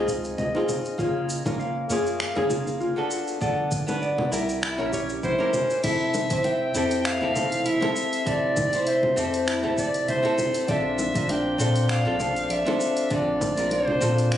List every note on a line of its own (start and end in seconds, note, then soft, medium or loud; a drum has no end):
0.00 0.35 C#2 loud
0.00 0.51 C4 medium
0.00 0.51 D#4 medium
0.00 0.51 F4 medium
0.00 0.52 G#4 medium
0.08 kick medium
0.08 shaker medium
0.24 shaker soft
0.38 0.52 C#2 medium
0.38 0.66 D#5 medium
0.38 low conga medium
0.38 shaker soft
0.55 0.96 C4 medium
0.55 0.96 D#4 medium
0.55 0.96 F4 medium
0.55 0.96 G#4 medium
0.55 high bongo soft
0.69 low conga medium
0.69 shaker medium
0.85 shaker soft
0.98 1.42 F#1 medium
0.98 1.41 A#3 medium
0.98 1.42 C#4 medium
0.98 1.28 F4 medium
0.98 1.42 F4 medium
0.98 1.42 G#4 medium
0.98 kick loud
0.98 shaker soft
1.29 shaker medium
1.45 1.86 F#1 medium
1.45 1.86 A#3 medium
1.45 1.87 C#4 medium
1.45 1.87 F4 medium
1.45 1.87 A#4 medium
1.45 kick loud
1.45 high bongo medium
1.45 shaker soft
1.59 1.88 F5 medium
1.59 shaker soft
1.89 2.38 F#2 medium
1.89 2.32 A#3 medium
1.89 2.33 C#4 medium
1.89 2.33 F4 medium
1.89 2.34 G#4 medium
1.89 shaker medium
2.06 shaker soft
2.20 2.48 F5 medium
2.20 finger snap medium
2.20 shaker soft
2.35 2.77 F#1 loud
2.35 2.93 A#3 medium
2.35 2.93 C#4 medium
2.35 2.93 F4 medium
2.35 2.94 G#4 loud
2.35 high bongo medium
2.50 low conga medium
2.50 shaker medium
2.67 high bongo soft
2.67 shaker soft
2.80 2.95 F#1 medium
2.80 3.10 F4 medium
2.80 shaker soft
2.96 3.37 B3 medium
2.96 3.38 D4 medium
2.96 3.38 F#4 medium
2.96 3.38 A4 medium
3.11 shaker medium
3.28 shaker soft
3.41 3.84 G1 loud
3.41 3.84 B3 medium
3.41 3.84 D4 medium
3.41 3.84 F#4 medium
3.41 3.85 A4 medium
3.41 3.70 D5 medium
3.41 kick loud
3.41 shaker soft
3.71 kick loud
3.71 shaker medium
3.87 4.29 G1 medium
3.87 4.28 B3 medium
3.87 4.28 D4 medium
3.87 4.29 F#4 medium
3.87 4.29 B4 medium
3.87 high bongo medium
3.87 shaker soft
4.02 4.29 D5 medium
4.02 shaker soft
4.18 low conga medium
4.32 4.81 C2 medium
4.32 4.75 E4 medium
4.32 4.75 G4 medium
4.32 4.75 A#4 medium
4.32 shaker medium
4.49 shaker soft
4.63 4.91 E4 medium
4.63 finger snap medium
4.63 shaker soft
4.78 5.20 A#1 medium
4.78 5.35 C#4 medium
4.78 5.35 E4 medium
4.78 5.36 G4 medium
4.78 5.36 A#4 medium
4.93 5.10 G4 medium
4.93 5.07 C#5 medium
4.93 kick medium
4.93 shaker medium
5.09 shaker soft
5.23 5.37 A#1 medium
5.23 5.52 E4 medium
5.23 5.80 C5 loud
5.23 low conga medium
5.23 shaker soft
5.38 5.80 C#4 medium
5.38 5.80 E4 medium
5.38 5.80 G4 medium
5.38 5.81 A#4 medium
5.38 high bongo soft
5.53 low conga medium
5.53 shaker medium
5.70 shaker soft
5.83 6.27 F1 loud
5.83 6.26 C4 medium
5.83 6.13 E4 medium
5.83 6.27 E4 medium
5.83 6.27 G4 medium
5.83 6.27 A4 medium
5.83 6.46 E5 loud
5.83 kick loud
5.83 closed hi-hat medium
5.83 crash loud
5.83 shaker soft
6.14 closed hi-hat soft
6.14 high bongo medium
6.14 shaker medium
6.30 6.71 F1 medium
6.30 6.71 C4 medium
6.30 6.72 E4 medium
6.30 6.72 G4 medium
6.30 6.72 C5 medium
6.30 kick loud
6.30 closed hi-hat soft
6.30 shaker soft
6.44 6.73 E5 medium
6.44 7.07 G5 loud
6.44 closed hi-hat medium
6.44 high bongo soft
6.44 shaker soft
6.74 7.23 F2 medium
6.74 7.17 C4 medium
6.74 7.18 E4 medium
6.74 7.18 G4 medium
6.74 7.18 A4 loud
6.74 closed hi-hat soft
6.74 shaker medium
6.91 closed hi-hat soft
6.91 shaker soft
7.05 7.32 E5 medium
7.05 7.68 F5 loud
7.05 finger snap medium
7.05 closed hi-hat medium
7.05 shaker soft
7.21 7.62 F1 loud
7.21 7.32 C4 medium
7.21 7.33 E4 medium
7.21 7.33 G4 medium
7.21 7.33 A4 loud
7.34 7.78 E3 medium
7.34 7.78 C4 medium
7.34 7.78 G4 medium
7.34 7.79 A4 medium
7.34 low conga medium
7.34 shaker medium
7.52 closed hi-hat soft
7.52 shaker soft
7.65 7.80 F1 medium
7.65 7.94 E4 medium
7.65 8.28 E5 loud
7.65 closed hi-hat medium
7.65 shaker soft
7.80 8.22 C4 loud
7.80 8.22 E4 medium
7.80 8.23 G4 medium
7.80 8.23 A4 loud
7.80 closed hi-hat soft
7.80 high bongo medium
7.96 shaker medium
8.13 closed hi-hat soft
8.13 shaker soft
8.25 8.69 F1 loud
8.25 8.69 C4 medium
8.25 8.69 E4 medium
8.25 8.69 G4 medium
8.25 8.70 A4 medium
8.25 8.89 D5 loud
8.25 8.55 E5 medium
8.25 kick loud
8.25 closed hi-hat medium
8.25 shaker soft
8.57 kick loud
8.57 closed hi-hat soft
8.57 high bongo soft
8.57 shaker medium
8.73 9.14 F1 medium
8.73 9.14 C4 medium
8.73 9.14 E4 medium
8.73 9.14 G4 medium
8.73 9.15 C5 medium
8.73 closed hi-hat soft
8.73 shaker soft
8.87 9.51 C5 loud
8.87 9.14 E5 medium
8.87 closed hi-hat medium
8.87 shaker soft
9.03 low conga medium
9.16 9.66 F2 medium
9.16 9.59 C4 medium
9.16 9.60 E4 medium
9.16 9.60 G4 medium
9.16 9.60 A4 loud
9.16 closed hi-hat soft
9.16 shaker medium
9.34 closed hi-hat soft
9.34 shaker soft
9.48 9.76 E4 medium
9.48 finger snap medium
9.48 closed hi-hat medium
9.48 shaker soft
9.63 10.05 F1 loud
9.63 9.74 C4 medium
9.63 9.75 E4 medium
9.63 9.75 G4 medium
9.63 9.75 A4 loud
9.76 10.20 C4 medium
9.76 10.20 E4 medium
9.76 10.20 G4 medium
9.76 10.21 A4 medium
9.76 10.06 D5 loud
9.76 kick medium
9.76 shaker medium
9.94 closed hi-hat soft
9.94 shaker soft
10.08 10.22 F1 medium
10.08 10.72 C5 loud
10.08 10.37 E5 medium
10.08 closed hi-hat medium
10.08 low conga medium
10.08 shaker soft
10.23 10.64 C4 loud
10.23 10.65 E4 medium
10.23 10.65 G4 medium
10.23 10.66 A4 loud
10.23 closed hi-hat soft
10.38 low conga medium
10.38 shaker medium
10.54 closed hi-hat soft
10.54 shaker soft
10.68 11.11 A#1 loud
10.68 11.11 C4 medium
10.68 11.11 D4 medium
10.68 11.12 F4 medium
10.68 11.12 A4 medium
10.68 10.96 D5 medium
10.68 11.32 E5 loud
10.68 kick loud
10.68 closed hi-hat medium
10.68 shaker soft
10.99 closed hi-hat soft
10.99 high bongo soft
10.99 shaker medium
11.14 11.56 A#1 medium
11.14 11.56 C4 medium
11.14 11.56 D4 medium
11.14 11.56 F4 medium
11.14 11.57 A#4 medium
11.14 kick loud
11.14 closed hi-hat soft
11.14 shaker soft
11.29 11.58 D4 medium
11.29 11.92 G5 loud
11.29 closed hi-hat medium
11.29 high bongo soft
11.29 shaker soft
11.58 12.08 A#2 medium
11.58 12.02 C4 medium
11.58 12.02 D4 medium
11.58 12.03 F4 medium
11.58 12.03 A4 loud
11.58 closed hi-hat soft
11.58 shaker medium
11.76 closed hi-hat soft
11.76 shaker soft
11.89 12.19 D5 medium
11.89 12.53 F5 loud
11.89 finger snap medium
11.89 closed hi-hat medium
11.89 shaker soft
12.05 12.47 A#1 loud
12.05 12.17 C4 loud
12.05 12.17 D4 medium
12.05 12.17 F4 medium
12.05 12.18 A4 loud
12.19 12.62 C4 medium
12.19 12.63 D4 medium
12.19 12.63 F4 medium
12.19 12.63 A4 medium
12.19 low conga medium
12.19 shaker medium
12.36 closed hi-hat soft
12.36 shaker soft
12.50 12.64 A#1 medium
12.50 12.78 D5 medium
12.50 13.11 E5 loud
12.50 closed hi-hat medium
12.50 shaker soft
12.66 13.07 C4 loud
12.66 13.07 D4 medium
12.66 13.08 F4 medium
12.66 13.08 A4 loud
12.66 closed hi-hat soft
12.66 high bongo medium
12.80 shaker medium
12.97 closed hi-hat soft
12.97 shaker soft
13.10 13.54 A#1 medium
13.10 13.53 C4 medium
13.10 13.54 D4 medium
13.10 13.40 D4 medium
13.10 13.54 F4 medium
13.10 13.54 A4 medium
13.10 13.68 D5 loud
13.10 kick loud
13.10 closed hi-hat medium
13.10 shaker soft
13.41 kick loud
13.41 closed hi-hat soft
13.41 high bongo medium
13.41 shaker medium
13.56 13.98 A#1 medium
13.56 13.98 C4 medium
13.56 13.98 D4 medium
13.56 13.99 F4 medium
13.56 13.99 A#4 medium
13.56 closed hi-hat soft
13.56 shaker soft
13.71 14.32 C5 loud
13.71 14.01 D5 medium
13.71 closed hi-hat medium
13.71 high bongo soft
13.71 shaker soft
13.88 low conga medium
14.01 14.38 A#2 medium
14.01 14.38 C4 medium
14.01 14.38 D4 medium
14.01 14.38 F4 medium
14.01 14.38 A4 loud
14.01 closed hi-hat soft
14.01 shaker medium
14.18 closed hi-hat soft
14.18 shaker soft
14.32 14.38 D5 medium
14.32 finger snap medium
14.32 closed hi-hat medium
14.32 shaker soft